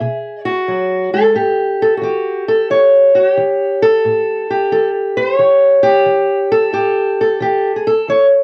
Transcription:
Already playing: E5
0.00 B2 G#4
0.45 F#4
0.68 F#3
1.13 G#3 A4
1.34 A2 G4
1.82 A4
1.97 F#4
2.01 E3 G4
2.48 A4
2.70 E3 C#5
3.15 F#4
3.29 G4
3.37 E3
3.82 A4
4.05 A2
4.50 G4
4.72 E3 A4
5.17 C5
5.37 E3 G4 C#5
5.83 G4
6.06 E3
6.52 A4
6.73 A2 G4
7.21 A4
7.40 E3 G4
7.76 G#4
7.87 A4
8.08 E3 C#5

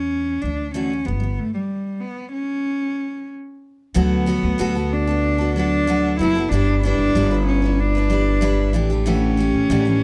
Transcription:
Already playing: E2 C#4
0.41 D2 D3 E3 D4
0.74 D3 E3 A3 C#4 D4 F#4
0.90 D3 E3
1.05 G1 G3 B3
1.20 G3 B3
1.39 A3
1.54 G3
2.01 B3
2.33 C#4
3.94 D2 D3 F#3 B3 F#4 A4
3.98 B3
4.26 F#3 B3 F#4 A4
4.43 D2
4.58 D2 D3 F#3 B3 F#4 A4
4.75 B3 F#4 A4
4.93 D4
5.07 B3 F#4 A4
5.38 B3 F#4 A4
5.56 F#3 B3 D4 F#4 A4
5.87 D3 F#3 B3 F#4 A4
6.19 F#1 F#3 B3 E4 F#4 A4
6.35 B3 F#4 A4
6.51 G1 G3 D4 E4 B4
6.83 G3 D4 E4 B4
6.99 G1
7.15 G1 G3 D4 E4 B4
7.31 D4 E4 B4
7.48 C#4
7.62 D4 E4 B4
7.80 D4
7.95 D4 E4 B4
8.10 G3 D4 E4 B4
8.41 G3 D4 E4 B4
8.73 A1 E3 A3 D4 G4
8.90 E3 A3 D4 G4
9.06 A2 D3 E3 A3 C#4 G4
9.37 E3 A3 G4
9.54 A1
9.70 A1 A2 D3 E3 A3 D4 G4
9.85 E3 A3 D4 G4

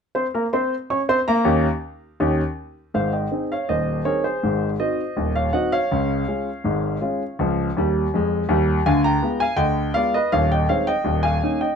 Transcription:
0.15 C4 C5 C6
0.34 A#3 A#4 A#5
0.53 C4 C5 C6
0.90 C#4 C#5 C#6
1.09 C4 C5 C6
1.28 A#3 A#4 A#5
1.45 D#2 C#4 D#4 G4
2.20 D#2 C#4 D#4 G4
2.94 G#1 G#2 C5 F5
3.13 D#5 G5
3.32 C4 D#4 G#4
3.52 C#5 F5
3.69 D#1 D#2 C5 D#5
4.05 C4 D#4 G#4 A#4 C#5
4.24 G#4 C5
4.43 G#1 G#2
4.80 C4 D#4 F#4 C5 D#5
5.17 D#1 D#2
5.36 C#5 F5
5.53 C4 D#4 F#4 D#5 F#5
5.72 C#5 F5
5.92 C#2 C#3
6.28 G#3 C#4 F4
6.64 G#1 G#2
7.01 G#3 C#4 F4
7.39 C#2 F3
7.77 D#2 G3
8.14 F2 G#3
8.49 D#2 G3
8.86 D2 D3 F5 G#5
9.04 G5 A#5
9.22 G#3 B3 F4
9.40 F5 G#5
9.57 D2 D3 D#5 G5
9.94 G#3 B3 F4 D5 F5
10.14 B4 D#5
10.32 D#1 D#2 C#5 F5
10.52 D#5 G5
10.69 G#3 C4 D#4 C#5 F5
10.87 D#5 G5
11.04 D#1 D#2
11.23 F5 G#5
11.43 A#3 C#4 D#4
11.61 D#5 G5

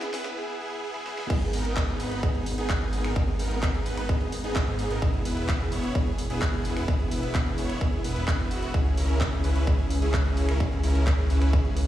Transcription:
Already playing: B3 E4 G#4
0.02 snare, closed hi-hat
0.14 B3 E4 B4, snare, open hi-hat
0.25 snare
0.37 B3 E4 G#4
0.60 B3 E4 G#4
0.84 B3 E4 G#4
0.95 snare
1.07 B3 E4 G#4, snare
1.18 snare
1.30 G#1 B3 D#4 G#4, kick, closed hi-hat, crash
1.42 closed hi-hat
1.53 G#1 B3 D#4 A#4, open hi-hat
1.65 closed hi-hat
1.77 kick, clap, closed hi-hat
1.88 G#1 B3 D#4 G#4, closed hi-hat
2.00 G#1 B3 D#4 B4, open hi-hat
2.11 closed hi-hat
2.23 G#1 B3 D#4 G#4, kick, closed hi-hat
2.35 closed hi-hat
2.46 open hi-hat
2.58 G#1 B3 D#4 G#4, closed hi-hat
2.70 kick, clap, closed hi-hat
2.81 G#1 B3 D#4 G#4, closed hi-hat
2.93 open hi-hat
3.04 G#1 B3 D#4 A#4, finger snap, closed hi-hat
3.16 G#1 B3 D#4 G#4, kick, closed hi-hat
3.28 closed hi-hat
3.39 G#1 B3 D#4 A#4, open hi-hat
3.51 closed hi-hat
3.63 kick, clap, closed hi-hat
3.74 G#1 B3 D#4 G#4, closed hi-hat
3.86 G#1 B3 D#4 B4, open hi-hat
3.98 finger snap, closed hi-hat
4.09 G#1 B3 D#4 G#4, kick, closed hi-hat
4.21 closed hi-hat
4.32 open hi-hat
4.44 G#1 B3 D#4 G#4, closed hi-hat
4.56 kick, clap, closed hi-hat
4.67 G#2 B3 D#4 G#4, closed hi-hat
4.79 open hi-hat
4.90 G#1 B3 D#4 A#4, closed hi-hat
5.02 E1 B3 E4 G#4, kick, closed hi-hat
5.14 closed hi-hat
5.25 E1 B3 E4 B4, open hi-hat
5.37 closed hi-hat
5.49 kick, clap, closed hi-hat
5.60 E1 B3 E4 G#4, closed hi-hat
5.72 E1 B3 E4 C#5, open hi-hat
5.84 closed hi-hat
5.95 E1 B3 E4 G#4, kick, closed hi-hat
6.07 closed hi-hat
6.18 open hi-hat
6.30 E1 B3 E4 G#4, closed hi-hat
6.42 kick, clap, closed hi-hat
6.53 E1 B3 E4 G#4, closed hi-hat
6.65 open hi-hat
6.77 E1 B3 E4 B4, finger snap, closed hi-hat
6.88 E1 B3 E4 G#4, kick, closed hi-hat
7.00 closed hi-hat
7.11 E1 B3 E4 B4, open hi-hat
7.23 closed hi-hat
7.35 kick, clap, closed hi-hat
7.46 E1 B3 E4 G#4, closed hi-hat
7.58 E1 B3 E4 C#5, open hi-hat
7.70 finger snap, closed hi-hat
7.81 E1 B3 E4 G#4, kick, closed hi-hat
7.93 closed hi-hat
8.04 E1 B3 E4 B4, open hi-hat
8.16 closed hi-hat
8.28 E1 B3 E4 G#4, kick, clap, closed hi-hat
8.39 E1 B3 E4 B4, closed hi-hat
8.51 E1 B3 E4 F#4, open hi-hat
8.63 closed hi-hat
8.74 C#2 C#4 E4 G#4, kick, closed hi-hat
8.86 closed hi-hat
8.97 C#2 C#4 E4 A#4, open hi-hat
9.09 closed hi-hat
9.21 kick, clap, closed hi-hat
9.32 C#2 C#4 E4 G#4, closed hi-hat
9.44 C#2 C#4 E4 B4, open hi-hat
9.56 closed hi-hat
9.67 C#2 C#4 E4 G#4, kick, closed hi-hat
9.79 closed hi-hat
9.90 open hi-hat
10.02 C#2 C#4 E4 G#4, closed hi-hat
10.14 kick, clap, closed hi-hat
10.25 C#2 C#4 E4 G#4, closed hi-hat
10.37 open hi-hat
10.49 C#2 C#4 E4 A#4, finger snap, closed hi-hat
10.60 C#2 C#4 E4 G#4, kick, closed hi-hat
10.72 closed hi-hat
10.84 C#2 C#4 E4 A#4, open hi-hat
10.95 closed hi-hat
11.07 kick, clap, closed hi-hat
11.18 C#2 C#4 E4 G#4, closed hi-hat
11.30 C#2 C#4 E4 B4, open hi-hat
11.42 finger snap, closed hi-hat
11.53 C#2 C#4 E4 G#4, kick, closed hi-hat
11.65 closed hi-hat
11.77 open hi-hat

